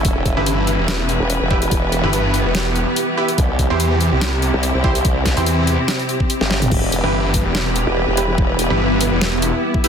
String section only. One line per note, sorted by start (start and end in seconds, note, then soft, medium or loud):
0.00 3.34 E4 medium
0.05 3.35 E3 medium
0.05 6.67 G4 medium
0.05 3.35 B4 medium
3.38 6.68 C3 medium
3.38 6.68 C4 medium
3.38 6.68 E4 medium
6.71 9.88 E3 medium
6.71 9.88 E4 medium
6.71 9.88 G4 medium
6.71 9.88 B4 medium